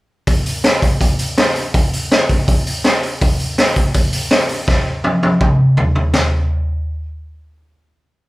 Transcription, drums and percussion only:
0, 0, Header, 1, 2, 480
1, 0, Start_track
1, 0, Tempo, 366748
1, 361, Time_signature, 4, 2, 24, 8
1, 10849, End_track
2, 0, Start_track
2, 0, Title_t, "Drums"
2, 352, Note_on_c, 9, 46, 77
2, 356, Note_on_c, 9, 36, 109
2, 483, Note_off_c, 9, 46, 0
2, 487, Note_off_c, 9, 36, 0
2, 600, Note_on_c, 9, 46, 59
2, 731, Note_off_c, 9, 46, 0
2, 838, Note_on_c, 9, 38, 101
2, 838, Note_on_c, 9, 46, 74
2, 969, Note_off_c, 9, 38, 0
2, 969, Note_off_c, 9, 46, 0
2, 1078, Note_on_c, 9, 36, 89
2, 1083, Note_on_c, 9, 46, 66
2, 1209, Note_off_c, 9, 36, 0
2, 1213, Note_off_c, 9, 46, 0
2, 1318, Note_on_c, 9, 36, 101
2, 1321, Note_on_c, 9, 46, 78
2, 1448, Note_off_c, 9, 36, 0
2, 1452, Note_off_c, 9, 46, 0
2, 1556, Note_on_c, 9, 46, 63
2, 1686, Note_off_c, 9, 46, 0
2, 1801, Note_on_c, 9, 38, 116
2, 1801, Note_on_c, 9, 46, 74
2, 1932, Note_off_c, 9, 38, 0
2, 1932, Note_off_c, 9, 46, 0
2, 2038, Note_on_c, 9, 46, 58
2, 2169, Note_off_c, 9, 46, 0
2, 2280, Note_on_c, 9, 36, 115
2, 2281, Note_on_c, 9, 46, 78
2, 2411, Note_off_c, 9, 36, 0
2, 2412, Note_off_c, 9, 46, 0
2, 2530, Note_on_c, 9, 46, 56
2, 2661, Note_off_c, 9, 46, 0
2, 2769, Note_on_c, 9, 38, 111
2, 2769, Note_on_c, 9, 46, 71
2, 2900, Note_off_c, 9, 38, 0
2, 2900, Note_off_c, 9, 46, 0
2, 3001, Note_on_c, 9, 46, 55
2, 3003, Note_on_c, 9, 36, 88
2, 3132, Note_off_c, 9, 46, 0
2, 3134, Note_off_c, 9, 36, 0
2, 3246, Note_on_c, 9, 36, 105
2, 3248, Note_on_c, 9, 46, 70
2, 3377, Note_off_c, 9, 36, 0
2, 3379, Note_off_c, 9, 46, 0
2, 3491, Note_on_c, 9, 46, 57
2, 3622, Note_off_c, 9, 46, 0
2, 3723, Note_on_c, 9, 38, 99
2, 3723, Note_on_c, 9, 46, 73
2, 3854, Note_off_c, 9, 38, 0
2, 3854, Note_off_c, 9, 46, 0
2, 3966, Note_on_c, 9, 46, 57
2, 4097, Note_off_c, 9, 46, 0
2, 4205, Note_on_c, 9, 46, 80
2, 4208, Note_on_c, 9, 36, 120
2, 4336, Note_off_c, 9, 46, 0
2, 4339, Note_off_c, 9, 36, 0
2, 4444, Note_on_c, 9, 46, 49
2, 4575, Note_off_c, 9, 46, 0
2, 4689, Note_on_c, 9, 38, 97
2, 4689, Note_on_c, 9, 46, 76
2, 4820, Note_off_c, 9, 38, 0
2, 4820, Note_off_c, 9, 46, 0
2, 4918, Note_on_c, 9, 46, 59
2, 4926, Note_on_c, 9, 36, 80
2, 5049, Note_off_c, 9, 46, 0
2, 5057, Note_off_c, 9, 36, 0
2, 5159, Note_on_c, 9, 46, 73
2, 5165, Note_on_c, 9, 36, 102
2, 5290, Note_off_c, 9, 46, 0
2, 5296, Note_off_c, 9, 36, 0
2, 5401, Note_on_c, 9, 46, 70
2, 5532, Note_off_c, 9, 46, 0
2, 5639, Note_on_c, 9, 38, 109
2, 5639, Note_on_c, 9, 46, 76
2, 5770, Note_off_c, 9, 38, 0
2, 5770, Note_off_c, 9, 46, 0
2, 5875, Note_on_c, 9, 46, 58
2, 6006, Note_off_c, 9, 46, 0
2, 6122, Note_on_c, 9, 38, 62
2, 6123, Note_on_c, 9, 36, 111
2, 6253, Note_off_c, 9, 36, 0
2, 6253, Note_off_c, 9, 38, 0
2, 6597, Note_on_c, 9, 48, 70
2, 6727, Note_off_c, 9, 48, 0
2, 6843, Note_on_c, 9, 48, 72
2, 6974, Note_off_c, 9, 48, 0
2, 7077, Note_on_c, 9, 36, 102
2, 7080, Note_on_c, 9, 47, 82
2, 7208, Note_off_c, 9, 36, 0
2, 7210, Note_off_c, 9, 47, 0
2, 7554, Note_on_c, 9, 43, 87
2, 7685, Note_off_c, 9, 43, 0
2, 7792, Note_on_c, 9, 43, 77
2, 7923, Note_off_c, 9, 43, 0
2, 8031, Note_on_c, 9, 38, 103
2, 8031, Note_on_c, 9, 43, 103
2, 8031, Note_on_c, 9, 52, 82
2, 8162, Note_off_c, 9, 38, 0
2, 8162, Note_off_c, 9, 43, 0
2, 8162, Note_off_c, 9, 52, 0
2, 10849, End_track
0, 0, End_of_file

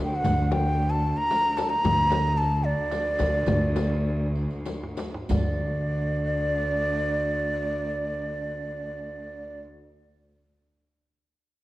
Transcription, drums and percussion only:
0, 0, Header, 1, 4, 480
1, 0, Start_track
1, 0, Tempo, 531915
1, 226, Time_signature, 3, 2, 24, 8
1, 2627, Tempo, 568182
1, 3587, Tempo, 607287
1, 4067, Tempo, 660066
1, 9143, End_track
2, 0, Start_track
2, 0, Title_t, "Frame drum"
2, 228, Note_on_c, 9, 64, 78
2, 318, Note_off_c, 9, 64, 0
2, 468, Note_on_c, 9, 64, 89
2, 558, Note_off_c, 9, 64, 0
2, 1185, Note_on_c, 9, 64, 71
2, 1276, Note_off_c, 9, 64, 0
2, 1431, Note_on_c, 9, 64, 87
2, 1521, Note_off_c, 9, 64, 0
2, 1668, Note_on_c, 9, 64, 101
2, 1758, Note_off_c, 9, 64, 0
2, 1912, Note_on_c, 9, 64, 88
2, 2003, Note_off_c, 9, 64, 0
2, 2636, Note_on_c, 9, 64, 62
2, 2721, Note_off_c, 9, 64, 0
2, 2868, Note_on_c, 9, 64, 81
2, 2953, Note_off_c, 9, 64, 0
2, 3103, Note_on_c, 9, 64, 85
2, 3188, Note_off_c, 9, 64, 0
2, 3347, Note_on_c, 9, 64, 80
2, 3431, Note_off_c, 9, 64, 0
2, 4072, Note_on_c, 9, 64, 69
2, 4145, Note_off_c, 9, 64, 0
2, 4300, Note_on_c, 9, 64, 79
2, 4372, Note_off_c, 9, 64, 0
2, 4541, Note_on_c, 9, 64, 80
2, 4614, Note_off_c, 9, 64, 0
2, 9143, End_track
3, 0, Start_track
3, 0, Title_t, "Riq"
3, 222, Note_on_c, 9, 54, 58
3, 313, Note_off_c, 9, 54, 0
3, 1181, Note_on_c, 9, 54, 52
3, 1271, Note_off_c, 9, 54, 0
3, 1423, Note_on_c, 9, 54, 53
3, 1513, Note_off_c, 9, 54, 0
3, 1661, Note_on_c, 9, 54, 52
3, 1751, Note_off_c, 9, 54, 0
3, 1900, Note_on_c, 9, 54, 49
3, 1990, Note_off_c, 9, 54, 0
3, 2629, Note_on_c, 9, 54, 49
3, 2713, Note_off_c, 9, 54, 0
3, 2859, Note_on_c, 9, 54, 53
3, 2944, Note_off_c, 9, 54, 0
3, 3092, Note_on_c, 9, 54, 57
3, 3177, Note_off_c, 9, 54, 0
3, 3341, Note_on_c, 9, 54, 51
3, 3425, Note_off_c, 9, 54, 0
3, 3828, Note_on_c, 9, 54, 18
3, 3907, Note_off_c, 9, 54, 0
3, 3948, Note_on_c, 9, 54, 16
3, 4027, Note_off_c, 9, 54, 0
3, 4066, Note_on_c, 9, 54, 51
3, 4139, Note_off_c, 9, 54, 0
3, 4296, Note_on_c, 9, 54, 51
3, 4368, Note_off_c, 9, 54, 0
3, 4530, Note_on_c, 9, 54, 81
3, 4602, Note_off_c, 9, 54, 0
3, 9143, End_track
4, 0, Start_track
4, 0, Title_t, "Tombak"
4, 225, Note_on_c, 9, 64, 73
4, 315, Note_off_c, 9, 64, 0
4, 466, Note_on_c, 9, 63, 62
4, 556, Note_off_c, 9, 63, 0
4, 1066, Note_on_c, 9, 62, 27
4, 1156, Note_off_c, 9, 62, 0
4, 1183, Note_on_c, 9, 63, 75
4, 1273, Note_off_c, 9, 63, 0
4, 1418, Note_on_c, 9, 63, 73
4, 1509, Note_off_c, 9, 63, 0
4, 1668, Note_on_c, 9, 64, 83
4, 1758, Note_off_c, 9, 64, 0
4, 1902, Note_on_c, 9, 63, 70
4, 1992, Note_off_c, 9, 63, 0
4, 2507, Note_on_c, 9, 62, 30
4, 2597, Note_off_c, 9, 62, 0
4, 2628, Note_on_c, 9, 63, 67
4, 2713, Note_off_c, 9, 63, 0
4, 2863, Note_on_c, 9, 63, 69
4, 2947, Note_off_c, 9, 63, 0
4, 3098, Note_on_c, 9, 64, 93
4, 3183, Note_off_c, 9, 64, 0
4, 3343, Note_on_c, 9, 63, 67
4, 3427, Note_off_c, 9, 63, 0
4, 3829, Note_on_c, 9, 62, 28
4, 3908, Note_off_c, 9, 62, 0
4, 3957, Note_on_c, 9, 62, 31
4, 4036, Note_off_c, 9, 62, 0
4, 4077, Note_on_c, 9, 63, 58
4, 4149, Note_off_c, 9, 63, 0
4, 4197, Note_on_c, 9, 62, 75
4, 4269, Note_off_c, 9, 62, 0
4, 4312, Note_on_c, 9, 63, 72
4, 4385, Note_off_c, 9, 63, 0
4, 4423, Note_on_c, 9, 62, 97
4, 4496, Note_off_c, 9, 62, 0
4, 4544, Note_on_c, 9, 64, 78
4, 4616, Note_off_c, 9, 64, 0
4, 9143, End_track
0, 0, End_of_file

